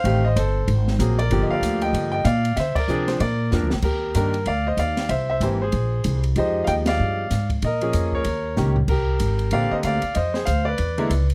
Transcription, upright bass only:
X:1
M:4/4
L:1/8
Q:"Swing" 1/4=190
K:Bbmix
V:1 name="Upright bass" clef=bass
=A,,,2 G,,,2 _A,,,2 B,,,2 | G,,, z D,,2 G,,2 B,,2 | D, z C,2 B,,2 (3F,, D,, B,,, | [K:Eb] E,,2 G,,2 D,,2 E,,2 |
C,,2 A,,,2 B,,,2 C,,2 | F,,2 E,,2 G,,2 A,,2 | B,,2 F,,2 E,,2 _D,,2 | C,,2 A,,,2 B,,, z D,, z |
F,,2 D,,2 =E,,2 _D,,2 |]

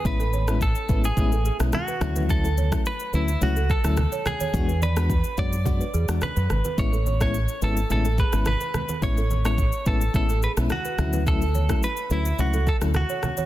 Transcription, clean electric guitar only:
X:1
M:4/4
L:1/16
Q:1/4=107
K:A
V:1 name="Clean electric guitar"
B4 A3 G4 z F4 | A4 B2 E2 F2 A4 G2- | G2 B4 d6 B4 | c3 c3 A2 A2 B2 B4 |
c3 c3 A2 A2 B2 F4 | A4 B2 E2 F2 A2 F4 |]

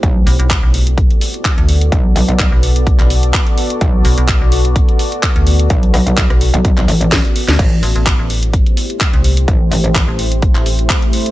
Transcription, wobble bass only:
X:1
M:4/4
L:1/16
Q:"Swing 16ths" 1/4=127
K:Bphr
V:1 name="Wobble bass" clef=bass
B,,,2 z12 z2 | B,,,2 B,,,3 z8 z3 | B,,,2 z12 z2 | B,,,2 B,,,3 z2 B,,,3 A,,,3 z3 |
A,,,2 z12 z2 | A,,,2 A,,,3 z8 z3 |]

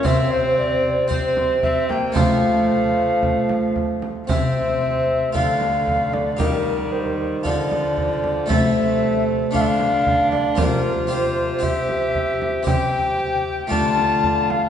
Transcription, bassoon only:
X:1
M:4/4
L:1/8
Q:1/4=114
K:Cmix
V:1 name="Bassoon" clef=bass
C,8 | F,6- F, z | C,4 D,4 | _E,4 D,4 |
C,4 D,4 | C,8- | C,3 z D,4 |]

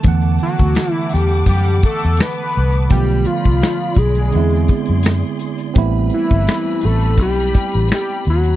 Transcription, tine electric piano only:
X:1
M:4/4
L:1/8
Q:"Swing 16ths" 1/4=84
K:Em
V:1 name="Tine electric piano"
[D,E,A,B,f]8 | [D,=F,A,B,=F]4 [D,^G,B,CE]4 | [G,A,B,CE]8 |]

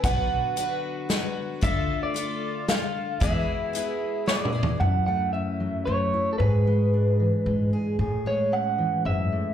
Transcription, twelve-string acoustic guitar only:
X:1
M:3/4
L:1/8
Q:1/4=113
K:Emix
V:1 name="Twelve-string acoustic guitar"
[B,,F,DFB]2 [F,DFB]2 [F,DFB]2 | [D,A,D=FA]2 [A,DFA]2 [A,DFA]2 | [E,G,B,EG]2 [G,B,EG]2 [G,B,EG] [B,EG] | z6 |
z6 | z6 |]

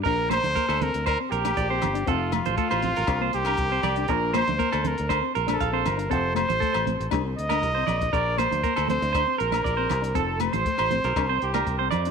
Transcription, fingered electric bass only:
X:1
M:4/4
L:1/16
Q:1/4=119
K:Bb
V:1 name="Fingered electric bass" clef=bass
B,,,3 D,, z D,,2 D,,2 z B,,,2 B,,,2 G,,,2 | F,,,3 A,,, z A,,,2 A,,, C,,2 C,,2 C,,2 C,,2 | B,,,3 D,, z D,,2 D,,2 z B,,,2 B,,,2 G,,,2 | F,,,3 A,,, z A,,,2 A,,, C,,2 D,,2 C,,2 B,,,2 |
B,,,3 D,, z D,,2 D,,2 z B,,,2 B,,,2 C,,2 | F,,,3 A,,, z A,,,2 _C,, =C,,2 C,,2 C,,2 F,,2 |]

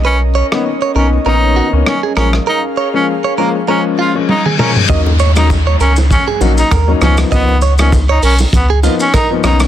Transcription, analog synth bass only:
X:1
M:4/4
L:1/16
Q:"Swing 16ths" 1/4=99
K:Dbmix
V:1 name="Analog synth bass" clef=bass
=B,,,4 z2 B,,,2 ^A,,,3 ^C,, z2 _B,,,2 | z16 | E,,6 D,,3 z B,,,2 E,,2 D,,2 | D,,6 C,,2 D,,3 z3 =B,,,2 |]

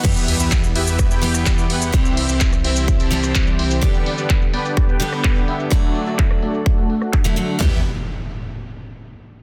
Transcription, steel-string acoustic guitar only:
X:1
M:4/4
L:1/16
Q:1/4=127
K:Em
V:1 name="Steel-string acoustic guitar" clef=bass
[E,G,B,G]8- [E,G,B,G]2 [E,G,B,G]6 | [E,G,CG]8- [E,G,CG]2 [E,G,CG]6 | [D,G,B,G]8- [D,G,B,G]2 [D,G,B,G]6 | [D,F,A,F]8- [D,F,A,F]2 z3 [D,F,A,E] [D,F,A,F]2 |
[E,G,B,G]2 z12 z2 |]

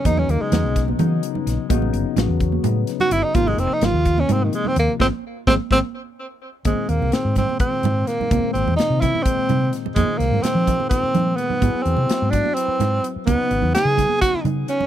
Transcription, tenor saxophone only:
X:1
M:7/8
L:1/16
Q:1/4=127
K:Cphr
V:1 name="Tenor saxophone"
^D _D B, ^G,4 z6 z | z8 z3 ^F =E _E | F A, C E F3 D C E, A, C B,2 | C2 z2 C2 C2 z6 |
A,2 B,2 C2 C2 C4 B,2- | B,2 C2 ^D2 =E2 C4 z2 | A,2 B,2 C4 C4 _C2- | _C2 =C4 =D2 C4 z2 |
_C4 A4 _G2 z2 D2 |]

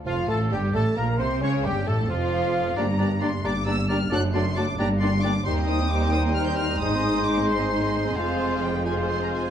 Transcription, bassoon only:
X:1
M:6/8
L:1/8
Q:3/8=89
K:Gdor
V:1 name="Bassoon" clef=bass
F, A, G, A, B, C | ^C G, A, F,3 | G, G, G, G, G, G, | ^F, F, F, G, G, G, |
[K:Cm] G,6 | A,6 | A,3 A,3 |]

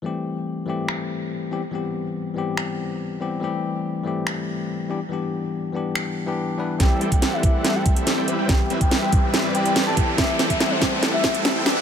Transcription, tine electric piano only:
X:1
M:4/4
L:1/16
Q:1/4=142
K:Ador
V:1 name="Tine electric piano"
[E,G,A,CG]6 [E,G,A,CG]8 [E,G,B,CG] z | [E,G,B,CG]6 [E,G,B,CG]8 [E,G,B,CG] z | [E,G,A,CG]6 [E,G,A,CG]8 [E,G,B,DG] z | [E,G,B,DG]6 [E,G,B,DG]4- [E,G,B,DG] [E,G,B,DG]3 [E,G,B,DB]2 |
[E,G,A,CG]6 [E,G,A,CG]8 [E,G,B,CG] z | [E,G,B,CG]6 [E,G,CGB]8 [E,G,B,CG] z | [E,G,A,CG]6 [E,G,A,CG]8 [E,G,B,DG] z |]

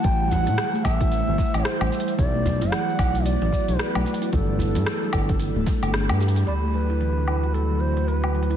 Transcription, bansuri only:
X:1
M:4/4
L:1/8
Q:"Swing 16ths" 1/4=112
K:Dmix
V:1 name="Bansuri"
g f2 e3 c2 | d2 f2 d2 B2 | A6 z2 | d B3 A c B2 |]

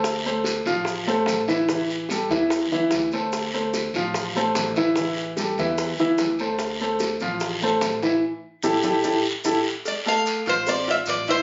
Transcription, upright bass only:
X:1
M:4/4
L:1/8
Q:1/4=147
K:Dm
V:1 name="Upright bass" clef=bass
D,,3 A,,,3 A,,,2- | A,,,3 E,,2 E,, D,,2- | D,,3 A,,,3 A,,,2- | A,,,3 E,,2 E,, D,,2- |
D,,3 A,,,3 A,,,2 | z2 A,,, A,,, A,,, z A,,, z | z3 A,,,3 A,,,2 |]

